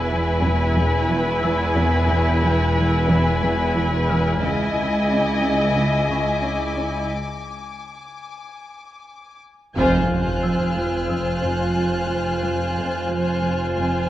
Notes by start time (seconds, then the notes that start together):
Already playing: E1 E2 E4 B4 G#5
0.09 E3
0.43 E2
0.76 E2
1.10 E3
1.43 E3 E6
1.76 E2
2.09 E2
2.43 E3
2.76 E3
3.09 E2
3.42 E2
3.75 E3
4.09 E3 F6
4.42 C#2 C#3 E4 D#5 G#5
4.75 C#3
5.09 C#4 D6
5.42 C#4
5.75 C#3
6.09 C#3 C#6
6.43 C#4
6.76 C#4
9.76 F1 F2 F4 C5 G#5 F6 F#6, taiko, impact
10.10 F2
10.43 F3 E6
10.77 F3
11.09 F2 E6
11.44 F2
11.76 F3
12.09 F3
12.43 F2
12.76 F2
13.10 F3
13.43 F3
13.76 F2